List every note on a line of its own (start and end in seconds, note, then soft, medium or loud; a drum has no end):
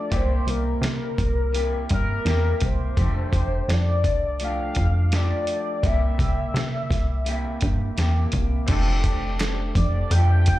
0.00 0.11 F3 medium
0.00 0.11 D4 medium
0.00 0.12 G4 medium
0.00 0.17 D5 medium
0.10 0.40 C2 loud
0.10 0.47 C3 medium
0.10 0.46 A#3 medium
0.10 0.45 E4 medium
0.10 0.44 G4 medium
0.10 kick loud
0.10 closed hi-hat medium
0.16 0.51 C5 medium
0.45 0.75 C2 medium
0.45 1.52 A#3 soft
0.45 1.53 E4 soft
0.45 1.55 G4 soft
0.45 closed hi-hat medium
0.50 1.91 A#4 loud
0.81 1.11 C3 loud
0.81 snare medium
0.81 closed hi-hat medium
1.18 1.76 C2 medium
1.18 kick medium
1.18 closed hi-hat medium
1.52 2.24 C3 medium
1.52 2.25 A#3 medium
1.52 2.26 E4 medium
1.52 2.27 G4 medium
1.52 closed hi-hat medium
1.89 2.19 G2 medium
1.89 2.66 A#4 medium
1.89 kick medium
1.89 closed hi-hat medium
2.25 2.54 E2 medium
2.25 2.97 C3 medium
2.25 2.97 A#3 medium
2.25 2.98 E4 medium
2.25 2.98 G4 medium
2.25 snare medium
2.25 closed hi-hat medium
2.60 2.90 C2 medium
2.60 kick medium
2.60 closed hi-hat medium
2.65 3.74 C5 medium
2.97 3.26 F1 medium
2.97 3.33 F3 medium
2.97 3.33 A3 medium
2.97 3.32 D4 medium
2.97 3.31 G4 medium
2.97 kick loud
2.97 closed hi-hat medium
3.32 3.61 F1 loud
3.32 4.40 A3 soft
3.32 4.41 D4 soft
3.32 4.42 G4 soft
3.32 kick medium
3.32 closed hi-hat medium
3.68 4.05 F2 loud
3.68 snare medium
3.68 closed hi-hat medium
3.73 4.42 D5 medium
4.04 4.61 C2 medium
4.04 kick medium
4.04 closed hi-hat medium
4.40 5.10 F3 soft
4.40 5.12 A3 medium
4.40 5.13 D4 medium
4.40 5.14 G4 medium
4.40 closed hi-hat medium
4.44 5.16 F5 loud
4.75 5.34 F2 medium
4.75 kick medium
4.75 closed hi-hat medium
5.12 5.83 F3 medium
5.12 5.84 A3 medium
5.12 5.84 D4 medium
5.12 5.85 G4 medium
5.12 5.87 D5 medium
5.12 snare medium
5.12 closed hi-hat medium
5.47 closed hi-hat medium
5.83 6.12 C2 loud
5.83 6.19 C3 medium
5.83 6.20 A#3 medium
5.83 6.19 E4 medium
5.83 6.17 G4 medium
5.83 8.34 E5 loud
5.83 kick loud
5.83 closed hi-hat medium
6.19 6.47 C2 medium
6.19 7.25 A#3 soft
6.19 7.26 E4 soft
6.19 7.28 G4 soft
6.19 kick medium
6.19 closed hi-hat medium
6.54 6.83 C3 loud
6.54 snare medium
6.54 closed hi-hat medium
6.90 7.47 C2 medium
6.90 kick medium
6.90 snare soft
6.90 closed hi-hat medium
7.25 7.95 C3 medium
7.25 7.97 A#3 medium
7.25 7.97 E4 medium
7.25 7.99 G4 medium
7.25 closed hi-hat medium
7.61 7.91 G2 medium
7.61 kick medium
7.61 closed hi-hat medium
7.97 8.26 E2 medium
7.97 8.68 C3 medium
7.97 8.69 A#3 medium
7.97 8.69 E4 medium
7.97 8.70 G4 medium
7.97 snare medium
7.97 closed hi-hat medium
8.32 8.62 C2 medium
8.32 kick medium
8.32 closed hi-hat medium
8.66 9.72 F1 loud
8.66 9.04 F3 medium
8.66 9.05 A3 medium
8.66 10.59 C4 medium
8.66 10.59 D4 medium
8.66 9.05 D4 loud
8.66 10.59 G4 medium
8.66 kick loud
8.66 closed hi-hat medium
8.66 crash medium
8.71 9.03 G4 loud
8.71 10.59 A4 medium
9.04 10.11 A3 soft
9.04 10.12 D4 medium
9.04 10.13 G4 medium
9.04 kick medium
9.04 closed hi-hat medium
9.40 snare loud
9.40 clap medium
9.40 closed hi-hat medium
9.75 10.04 F1 loud
9.75 10.13 D5 medium
9.75 kick medium
9.75 closed hi-hat medium
10.10 10.50 F2 medium
10.10 10.59 F3 medium
10.10 10.59 A3 medium
10.10 10.59 G5 loud
10.10 closed hi-hat medium
10.15 10.59 D4 medium
10.15 10.59 G4 medium
10.46 10.59 F1 medium
10.46 kick medium
10.46 closed hi-hat medium